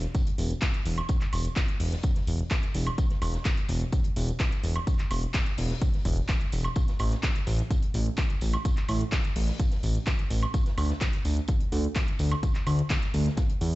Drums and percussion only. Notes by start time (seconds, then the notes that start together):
0.03 closed hi-hat
0.15 kick, closed hi-hat, tambourine
0.27 closed hi-hat
0.38 snare, open hi-hat, tambourine
0.50 closed hi-hat
0.61 kick, snare, clap, closed hi-hat, tambourine
0.74 closed hi-hat
0.86 open hi-hat, tambourine
0.98 closed hi-hat, high woodblock
1.09 kick, closed hi-hat, tambourine
1.21 clap, closed hi-hat
1.33 open hi-hat, tambourine, high woodblock
1.45 closed hi-hat
1.56 kick, snare, clap, closed hi-hat, tambourine
1.69 closed hi-hat
1.80 open hi-hat
1.92 snare, closed hi-hat
2.03 kick, closed hi-hat, tambourine
2.16 snare, closed hi-hat
2.27 open hi-hat, tambourine
2.39 closed hi-hat
2.50 kick, snare, clap, closed hi-hat, tambourine
2.63 closed hi-hat
2.74 open hi-hat, tambourine
2.87 closed hi-hat, high woodblock
2.98 kick, closed hi-hat, tambourine
3.10 snare, closed hi-hat
3.22 open hi-hat, tambourine, high woodblock
3.34 snare, closed hi-hat
3.45 kick, snare, clap, closed hi-hat, tambourine
3.57 closed hi-hat
3.68 open hi-hat, tambourine
3.81 closed hi-hat
3.92 kick, closed hi-hat, tambourine
4.04 closed hi-hat
4.16 snare, open hi-hat, tambourine
4.28 closed hi-hat
4.40 kick, snare, clap, closed hi-hat, tambourine
4.52 closed hi-hat
4.64 open hi-hat, tambourine
4.76 closed hi-hat, high woodblock
4.87 kick, closed hi-hat, tambourine
4.99 clap, closed hi-hat
5.11 open hi-hat, tambourine, high woodblock
5.23 closed hi-hat
5.34 kick, snare, clap, closed hi-hat, tambourine
5.46 closed hi-hat
5.58 open hi-hat
5.70 snare, closed hi-hat
5.82 kick, closed hi-hat, tambourine
5.94 snare, closed hi-hat
6.05 kick, open hi-hat, tambourine
6.17 closed hi-hat
6.28 kick, snare, clap, closed hi-hat, tambourine
6.41 closed hi-hat
6.52 open hi-hat, tambourine
6.64 high woodblock
6.76 kick, closed hi-hat, tambourine
6.88 snare, closed hi-hat
6.99 open hi-hat, tambourine, high woodblock
7.11 snare, closed hi-hat
7.23 kick, snare, clap, closed hi-hat, tambourine
7.35 closed hi-hat
7.47 open hi-hat, tambourine
7.59 closed hi-hat
7.71 kick, closed hi-hat, tambourine
7.82 closed hi-hat
7.94 snare, open hi-hat, tambourine
8.06 closed hi-hat
8.17 kick, snare, clap, closed hi-hat, tambourine
8.30 closed hi-hat
8.41 open hi-hat, tambourine
8.54 closed hi-hat, high woodblock
8.65 kick, closed hi-hat, tambourine
8.77 clap, closed hi-hat
8.88 open hi-hat, tambourine, high woodblock
9.01 closed hi-hat
9.12 kick, snare, clap, closed hi-hat, tambourine
9.24 closed hi-hat
9.36 open hi-hat
9.48 snare, closed hi-hat
9.59 kick, closed hi-hat, tambourine
9.71 snare, closed hi-hat
9.83 open hi-hat, tambourine
9.95 closed hi-hat
10.07 kick, snare, clap, closed hi-hat, tambourine
10.19 closed hi-hat
10.30 open hi-hat, tambourine
10.43 closed hi-hat, high woodblock
10.54 kick, closed hi-hat, tambourine
10.66 snare, closed hi-hat
10.78 open hi-hat, tambourine, high woodblock
10.90 snare, closed hi-hat
11.01 kick, snare, clap, closed hi-hat, tambourine
11.13 closed hi-hat
11.25 open hi-hat, tambourine
11.37 closed hi-hat
11.48 kick, closed hi-hat, tambourine
11.60 closed hi-hat
11.72 snare, open hi-hat, tambourine
11.84 closed hi-hat
11.96 kick, snare, clap, closed hi-hat, tambourine
12.08 closed hi-hat
12.19 open hi-hat, tambourine
12.32 high woodblock
12.43 kick, closed hi-hat, tambourine
12.55 clap, closed hi-hat
12.67 open hi-hat, tambourine, high woodblock
12.79 closed hi-hat
12.90 kick, snare, clap, closed hi-hat, tambourine
13.02 closed hi-hat
13.14 open hi-hat, tambourine
13.26 snare, closed hi-hat
13.37 kick, snare, closed hi-hat, tambourine
13.50 closed hi-hat
13.61 open hi-hat, tambourine